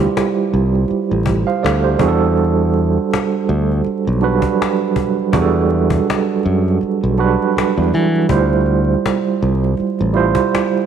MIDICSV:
0, 0, Header, 1, 5, 480
1, 0, Start_track
1, 0, Tempo, 740741
1, 1532, Time_signature, 4, 2, 24, 8
1, 7038, End_track
2, 0, Start_track
2, 0, Title_t, "Tine electric piano"
2, 0, Program_c, 0, 4
2, 0, Control_c, 0, 64, 127
2, 0, Note_on_c, 0, 55, 70
2, 0, Note_on_c, 0, 64, 70
2, 0, Note_on_c, 0, 65, 63
2, 0, Note_on_c, 0, 67, 80
2, 0, Note_on_c, 0, 71, 62
2, 0, Note_on_c, 0, 72, 82
2, 460, Note_off_c, 0, 55, 0
2, 463, Note_off_c, 0, 64, 0
2, 466, Note_off_c, 0, 65, 0
2, 469, Note_off_c, 0, 67, 0
2, 951, Note_on_c, 0, 77, 58
2, 955, Note_off_c, 0, 72, 0
2, 955, Note_on_c, 0, 72, 50
2, 1048, Note_off_c, 0, 77, 0
2, 1051, Note_off_c, 0, 72, 0
2, 1057, Note_on_c, 0, 74, 59
2, 1062, Note_on_c, 0, 69, 52
2, 1183, Note_off_c, 0, 74, 0
2, 1185, Note_off_c, 0, 69, 0
2, 1192, Note_on_c, 0, 72, 58
2, 1194, Note_on_c, 0, 67, 50
2, 1286, Note_on_c, 0, 55, 78
2, 1293, Note_on_c, 0, 62, 72
2, 1299, Control_c, 0, 64, 0
2, 1299, Note_on_c, 0, 66, 77
2, 1305, Note_off_c, 0, 71, 0
2, 1306, Note_on_c, 0, 68, 67
2, 1346, Note_off_c, 0, 68, 0
2, 1348, Note_on_c, 0, 69, 86
2, 1416, Control_c, 0, 64, 127
2, 1417, Note_off_c, 0, 72, 0
2, 1418, Note_off_c, 0, 67, 0
2, 2139, Note_off_c, 0, 55, 0
2, 2143, Note_off_c, 0, 62, 0
2, 2146, Note_off_c, 0, 66, 0
2, 2170, Note_off_c, 0, 69, 0
2, 2728, Note_on_c, 0, 54, 62
2, 2734, Note_on_c, 0, 62, 68
2, 2740, Note_on_c, 0, 66, 68
2, 2748, Note_on_c, 0, 71, 84
2, 2769, Note_on_c, 0, 55, 75
2, 2777, Note_off_c, 0, 54, 0
2, 3371, Note_off_c, 0, 62, 0
2, 3375, Note_off_c, 0, 66, 0
2, 3378, Note_off_c, 0, 71, 0
2, 3389, Note_off_c, 0, 55, 0
2, 3447, Note_on_c, 0, 55, 74
2, 3453, Note_on_c, 0, 62, 64
2, 3460, Note_on_c, 0, 66, 68
2, 3467, Note_on_c, 0, 68, 63
2, 3507, Note_off_c, 0, 68, 0
2, 3509, Note_on_c, 0, 69, 78
2, 4300, Note_off_c, 0, 55, 0
2, 4303, Note_off_c, 0, 62, 0
2, 4306, Note_off_c, 0, 66, 0
2, 4331, Note_off_c, 0, 69, 0
2, 4647, Note_on_c, 0, 54, 59
2, 4654, Note_on_c, 0, 62, 73
2, 4661, Note_on_c, 0, 66, 69
2, 4666, Note_on_c, 0, 71, 84
2, 4689, Note_on_c, 0, 55, 70
2, 4697, Note_off_c, 0, 54, 0
2, 5291, Note_off_c, 0, 62, 0
2, 5295, Note_off_c, 0, 66, 0
2, 5298, Note_off_c, 0, 71, 0
2, 5309, Note_off_c, 0, 55, 0
2, 5370, Note_on_c, 0, 55, 71
2, 5376, Note_on_c, 0, 64, 68
2, 5379, Control_c, 0, 64, 0
2, 5382, Note_on_c, 0, 65, 61
2, 5389, Note_on_c, 0, 72, 76
2, 5488, Control_c, 0, 64, 127
2, 6221, Note_off_c, 0, 55, 0
2, 6224, Note_off_c, 0, 64, 0
2, 6227, Note_off_c, 0, 65, 0
2, 6231, Note_off_c, 0, 72, 0
2, 6566, Note_on_c, 0, 55, 76
2, 6574, Note_on_c, 0, 64, 71
2, 6580, Note_on_c, 0, 65, 70
2, 6586, Note_on_c, 0, 72, 80
2, 7038, Note_off_c, 0, 55, 0
2, 7038, Note_off_c, 0, 64, 0
2, 7038, Note_off_c, 0, 65, 0
2, 7038, Note_off_c, 0, 72, 0
2, 7038, End_track
3, 0, Start_track
3, 0, Title_t, "Fingered electric bass"
3, 0, Program_c, 1, 33
3, 347, Note_on_c, 1, 36, 76
3, 550, Note_off_c, 1, 36, 0
3, 721, Note_on_c, 1, 33, 70
3, 925, Note_off_c, 1, 33, 0
3, 1065, Note_on_c, 1, 38, 84
3, 1269, Note_off_c, 1, 38, 0
3, 1297, Note_on_c, 1, 40, 79
3, 1923, Note_off_c, 1, 40, 0
3, 2261, Note_on_c, 1, 38, 78
3, 2467, Note_off_c, 1, 38, 0
3, 2640, Note_on_c, 1, 35, 75
3, 2844, Note_off_c, 1, 35, 0
3, 3460, Note_on_c, 1, 40, 91
3, 3875, Note_off_c, 1, 40, 0
3, 4183, Note_on_c, 1, 42, 73
3, 4388, Note_off_c, 1, 42, 0
3, 4558, Note_on_c, 1, 35, 77
3, 4763, Note_off_c, 1, 35, 0
3, 5039, Note_on_c, 1, 40, 74
3, 5125, Note_off_c, 1, 40, 0
3, 5147, Note_on_c, 1, 52, 81
3, 5349, Note_off_c, 1, 52, 0
3, 5379, Note_on_c, 1, 38, 87
3, 5795, Note_off_c, 1, 38, 0
3, 6108, Note_on_c, 1, 36, 79
3, 6310, Note_off_c, 1, 36, 0
3, 6484, Note_on_c, 1, 33, 72
3, 6686, Note_off_c, 1, 33, 0
3, 7038, End_track
4, 0, Start_track
4, 0, Title_t, "Cajon"
4, 110, Note_on_c, 9, 38, 97
4, 175, Note_off_c, 9, 38, 0
4, 486, Note_on_c, 9, 38, 29
4, 551, Note_off_c, 9, 38, 0
4, 571, Note_on_c, 9, 38, 37
4, 635, Note_off_c, 9, 38, 0
4, 814, Note_on_c, 9, 36, 86
4, 879, Note_off_c, 9, 36, 0
4, 970, Note_on_c, 9, 38, 31
4, 1035, Note_off_c, 9, 38, 0
4, 1074, Note_on_c, 9, 38, 101
4, 1139, Note_off_c, 9, 38, 0
4, 1292, Note_on_c, 9, 36, 94
4, 1357, Note_off_c, 9, 36, 0
4, 1445, Note_on_c, 9, 38, 17
4, 1510, Note_off_c, 9, 38, 0
4, 1538, Note_on_c, 9, 38, 40
4, 1603, Note_off_c, 9, 38, 0
4, 1774, Note_on_c, 9, 38, 30
4, 1838, Note_off_c, 9, 38, 0
4, 2031, Note_on_c, 9, 38, 98
4, 2096, Note_off_c, 9, 38, 0
4, 2408, Note_on_c, 9, 38, 30
4, 2473, Note_off_c, 9, 38, 0
4, 2491, Note_on_c, 9, 38, 38
4, 2556, Note_off_c, 9, 38, 0
4, 2727, Note_on_c, 9, 38, 32
4, 2792, Note_off_c, 9, 38, 0
4, 2864, Note_on_c, 9, 36, 75
4, 2885, Note_on_c, 9, 38, 30
4, 2929, Note_off_c, 9, 36, 0
4, 2950, Note_off_c, 9, 38, 0
4, 2993, Note_on_c, 9, 38, 91
4, 3058, Note_off_c, 9, 38, 0
4, 3214, Note_on_c, 9, 36, 73
4, 3278, Note_off_c, 9, 36, 0
4, 3365, Note_on_c, 9, 38, 17
4, 3430, Note_off_c, 9, 38, 0
4, 3454, Note_on_c, 9, 36, 101
4, 3519, Note_off_c, 9, 36, 0
4, 3692, Note_on_c, 9, 38, 32
4, 3757, Note_off_c, 9, 38, 0
4, 3826, Note_on_c, 9, 36, 81
4, 3890, Note_off_c, 9, 36, 0
4, 3953, Note_on_c, 9, 38, 94
4, 4017, Note_off_c, 9, 38, 0
4, 4167, Note_on_c, 9, 38, 31
4, 4232, Note_off_c, 9, 38, 0
4, 4316, Note_on_c, 9, 38, 18
4, 4329, Note_off_c, 9, 38, 0
4, 4329, Note_on_c, 9, 38, 31
4, 4394, Note_off_c, 9, 38, 0
4, 4413, Note_on_c, 9, 38, 38
4, 4478, Note_off_c, 9, 38, 0
4, 4650, Note_on_c, 9, 38, 31
4, 4715, Note_off_c, 9, 38, 0
4, 4810, Note_on_c, 9, 38, 33
4, 4875, Note_off_c, 9, 38, 0
4, 4914, Note_on_c, 9, 38, 102
4, 4979, Note_off_c, 9, 38, 0
4, 5142, Note_on_c, 9, 38, 32
4, 5207, Note_off_c, 9, 38, 0
4, 5284, Note_on_c, 9, 38, 31
4, 5349, Note_off_c, 9, 38, 0
4, 5374, Note_on_c, 9, 36, 100
4, 5438, Note_off_c, 9, 36, 0
4, 5612, Note_on_c, 9, 38, 31
4, 5676, Note_off_c, 9, 38, 0
4, 5868, Note_on_c, 9, 38, 98
4, 5933, Note_off_c, 9, 38, 0
4, 6248, Note_on_c, 9, 38, 32
4, 6313, Note_off_c, 9, 38, 0
4, 6333, Note_on_c, 9, 38, 37
4, 6398, Note_off_c, 9, 38, 0
4, 6569, Note_on_c, 9, 38, 31
4, 6634, Note_off_c, 9, 38, 0
4, 6706, Note_on_c, 9, 36, 76
4, 6729, Note_on_c, 9, 38, 33
4, 6770, Note_off_c, 9, 36, 0
4, 6794, Note_off_c, 9, 38, 0
4, 6834, Note_on_c, 9, 38, 97
4, 6899, Note_off_c, 9, 38, 0
4, 7038, End_track
5, 0, Start_track
5, 0, Title_t, "Muted fingered electric bass strokes"
5, 587, Note_on_c, 9, 29, 40
5, 652, Note_off_c, 9, 29, 0
5, 2503, Note_on_c, 9, 29, 40
5, 2568, Note_off_c, 9, 29, 0
5, 4424, Note_on_c, 9, 29, 39
5, 4489, Note_off_c, 9, 29, 0
5, 4904, Note_on_c, 9, 29, 41
5, 4968, Note_off_c, 9, 29, 0
5, 6349, Note_on_c, 9, 29, 38
5, 6414, Note_off_c, 9, 29, 0
5, 7038, End_track
0, 0, End_of_file